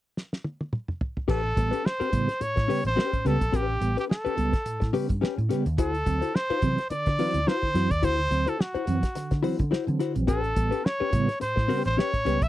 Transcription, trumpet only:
0, 0, Header, 1, 2, 480
1, 0, Start_track
1, 0, Tempo, 562324
1, 1098, Time_signature, 4, 2, 24, 8
1, 10656, End_track
2, 0, Start_track
2, 0, Title_t, "Trumpet"
2, 0, Program_c, 0, 56
2, 1104, Note_on_c, 0, 69, 92
2, 1584, Note_on_c, 0, 72, 90
2, 1597, Note_off_c, 0, 69, 0
2, 2066, Note_on_c, 0, 73, 97
2, 2079, Note_off_c, 0, 72, 0
2, 2435, Note_off_c, 0, 73, 0
2, 2448, Note_on_c, 0, 72, 92
2, 2791, Note_on_c, 0, 69, 91
2, 2804, Note_off_c, 0, 72, 0
2, 3034, Note_on_c, 0, 67, 90
2, 3047, Note_off_c, 0, 69, 0
2, 3400, Note_off_c, 0, 67, 0
2, 3408, Note_on_c, 0, 67, 75
2, 3452, Note_off_c, 0, 67, 0
2, 3507, Note_on_c, 0, 69, 77
2, 4187, Note_off_c, 0, 69, 0
2, 4941, Note_on_c, 0, 69, 93
2, 5422, Note_on_c, 0, 72, 97
2, 5435, Note_off_c, 0, 69, 0
2, 5886, Note_off_c, 0, 72, 0
2, 5891, Note_on_c, 0, 74, 94
2, 6381, Note_on_c, 0, 72, 108
2, 6394, Note_off_c, 0, 74, 0
2, 6752, Note_on_c, 0, 74, 100
2, 6764, Note_off_c, 0, 72, 0
2, 6863, Note_on_c, 0, 72, 101
2, 6876, Note_off_c, 0, 74, 0
2, 7244, Note_on_c, 0, 69, 86
2, 7257, Note_off_c, 0, 72, 0
2, 7350, Note_on_c, 0, 66, 70
2, 7363, Note_off_c, 0, 69, 0
2, 8064, Note_off_c, 0, 66, 0
2, 8779, Note_on_c, 0, 69, 90
2, 9261, Note_on_c, 0, 73, 79
2, 9274, Note_off_c, 0, 69, 0
2, 9740, Note_off_c, 0, 73, 0
2, 9744, Note_on_c, 0, 72, 84
2, 10090, Note_off_c, 0, 72, 0
2, 10120, Note_on_c, 0, 72, 92
2, 10230, Note_on_c, 0, 73, 100
2, 10243, Note_off_c, 0, 72, 0
2, 10607, Note_on_c, 0, 76, 94
2, 10620, Note_off_c, 0, 73, 0
2, 10656, Note_off_c, 0, 76, 0
2, 10656, End_track
0, 0, End_of_file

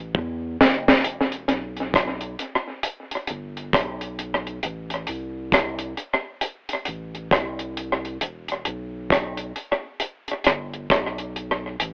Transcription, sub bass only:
0, 0, Header, 1, 2, 480
1, 0, Start_track
1, 0, Tempo, 895522
1, 561, Time_signature, 4, 2, 24, 8
1, 6394, End_track
2, 0, Start_track
2, 0, Title_t, "Sub bass"
2, 0, Program_c, 0, 38
2, 0, Note_on_c, 0, 33, 82
2, 75, Note_off_c, 0, 33, 0
2, 80, Note_on_c, 0, 40, 92
2, 303, Note_off_c, 0, 40, 0
2, 323, Note_on_c, 0, 30, 98
2, 544, Note_off_c, 0, 30, 0
2, 563, Note_on_c, 0, 28, 106
2, 785, Note_off_c, 0, 28, 0
2, 803, Note_on_c, 0, 35, 90
2, 1261, Note_off_c, 0, 35, 0
2, 1766, Note_on_c, 0, 31, 96
2, 1986, Note_off_c, 0, 31, 0
2, 2003, Note_on_c, 0, 35, 97
2, 2461, Note_off_c, 0, 35, 0
2, 2486, Note_on_c, 0, 33, 115
2, 2707, Note_off_c, 0, 33, 0
2, 2725, Note_on_c, 0, 36, 102
2, 3183, Note_off_c, 0, 36, 0
2, 3684, Note_on_c, 0, 33, 91
2, 3906, Note_off_c, 0, 33, 0
2, 3922, Note_on_c, 0, 36, 93
2, 4381, Note_off_c, 0, 36, 0
2, 4405, Note_on_c, 0, 28, 107
2, 4626, Note_off_c, 0, 28, 0
2, 4644, Note_on_c, 0, 35, 99
2, 5102, Note_off_c, 0, 35, 0
2, 5605, Note_on_c, 0, 31, 96
2, 5826, Note_off_c, 0, 31, 0
2, 5843, Note_on_c, 0, 35, 94
2, 6301, Note_off_c, 0, 35, 0
2, 6327, Note_on_c, 0, 33, 110
2, 6394, Note_off_c, 0, 33, 0
2, 6394, End_track
0, 0, End_of_file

